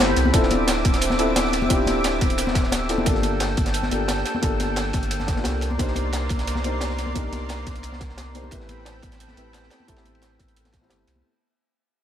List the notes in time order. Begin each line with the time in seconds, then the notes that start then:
Already playing: A3 C4 E4 G4 A4 B4 C5 G5 B5
0.00 G1, high conga
0.16 C2, snare, closed hi-hat, ride
0.25 high conga
0.33 D1 C4 D4 E4 F4 A4 E5 D6, kick, closed hi-hat, ride
0.43 snare
0.51 closed hi-hat, ride, high conga
0.67 snare, closed hi-hat, ride
0.85 D1, kick, closed hi-hat, ride, high conga
0.94 snare, closed hi-hat
1.01 closed hi-hat, ride
1.10 snare, high conga
1.18 C4 D4 E4 F4 A4, closed hi-hat, ride
1.36 snare, closed hi-hat, ride, high conga
1.45 snare
1.53 snare, closed hi-hat, ride
1.62 high conga
1.69 D1 C4 D4 E4 F4 G4, kick, closed hi-hat, ride
1.87 snare, closed hi-hat, ride, high conga
2.04 snare, closed hi-hat, ride
2.21 D1, kick, snare, closed hi-hat, ride, high conga
2.30 closed hi-hat
2.38 closed hi-hat, ride
2.47 snare, high conga
2.55 kick, snare, closed hi-hat, ride
2.64 snare
2.72 snare, closed hi-hat, ride, high conga
2.89 C4 D4 E4 F4 A4, snare, closed hi-hat, ride
2.98 high conga
3.05 G1 A#3 D4 F4 G4 A4 G5, kick, closed hi-hat, ride
3.15 snare
3.23 closed hi-hat, ride, high conga
3.40 snare, closed hi-hat, ride
3.57 G1, kick, closed hi-hat, ride, high conga
3.66 snare, closed hi-hat
3.74 closed hi-hat, ride
3.83 snare, high conga
3.91 G1 A#3 D4 F4 G4 A4, closed hi-hat, ride
4.08 snare, closed hi-hat, ride, high conga
4.17 snare
4.25 snare, closed hi-hat, ride
4.35 high conga
4.42 G1 A#3 D4 F4 G4 A4, kick, closed hi-hat, ride
4.60 snare, closed hi-hat, ride, high conga
4.76 snare, closed hi-hat, ride
4.93 G1, kick, snare, closed hi-hat, ride, high conga
5.03 closed hi-hat
5.11 closed hi-hat, ride
5.20 snare, high conga
5.27 kick, snare, closed hi-hat, ride
5.36 A#3 D4 F4 G4 A#4, snare
5.44 C2, snare, closed hi-hat, ride, high conga
5.61 A#4 D5 C6, snare, closed hi-hat, ride
5.71 high conga
5.78 C2 A#3 D4 D#4 G4 C5, kick, closed hi-hat, ride
5.88 snare
5.96 closed hi-hat, ride, high conga
6.13 snare, closed hi-hat, ride
6.29 C2, kick, closed hi-hat, ride, high conga
6.39 snare, closed hi-hat
6.47 closed hi-hat, ride
6.55 snare, high conga
6.64 A#3 D4 D#4 G4 C5, closed hi-hat, ride
6.81 snare, closed hi-hat, ride, high conga
6.90 snare
6.99 snare, closed hi-hat, ride
7.07 high conga
7.14 C2 A#3 D4 D#4 G4 A#4, kick, closed hi-hat, ride
7.32 snare, closed hi-hat, ride, high conga
7.49 snare, closed hi-hat, ride
7.66 C2, kick, snare, closed hi-hat, ride, high conga
7.76 closed hi-hat
7.83 closed hi-hat, ride
7.92 snare, high conga
8.00 kick, snare, closed hi-hat, ride
8.09 snare
8.18 snare, closed hi-hat, ride, high conga
8.34 A#3 D4 D#4 G4 C5, snare, closed hi-hat, ride
8.44 high conga
8.51 A1 A3 C4 E4 G4 A4 B4 G5 B5, kick, closed hi-hat, ride
8.61 snare
8.69 closed hi-hat, ride, high conga
8.85 snare, closed hi-hat, ride
9.02 A1, kick, closed hi-hat, ride, high conga
9.12 snare, closed hi-hat
9.20 closed hi-hat, ride
9.28 snare, high conga
9.37 A1 A3 C4 E4 G4 B4, closed hi-hat, ride
9.53 snare, closed hi-hat, ride, high conga
9.63 snare
9.70 snare, closed hi-hat, ride
9.80 high conga
9.87 A1 A3 C4 E4 G4 A4, kick, closed hi-hat, ride
9.96 snare, ride
10.05 closed hi-hat, high conga
10.15 ride
10.22 snare, closed hi-hat, ride
10.39 A1, kick, snare, closed hi-hat, ride, high conga
10.48 closed hi-hat
10.56 closed hi-hat, ride
10.65 snare, closed hi-hat, high conga
10.72 kick, snare, closed hi-hat, ride
10.81 A3 C4 E4 G4 C5, snare
10.90 G1, snare, closed hi-hat, ride, high conga
11.07 C2, snare, closed hi-hat, ride
11.16 high conga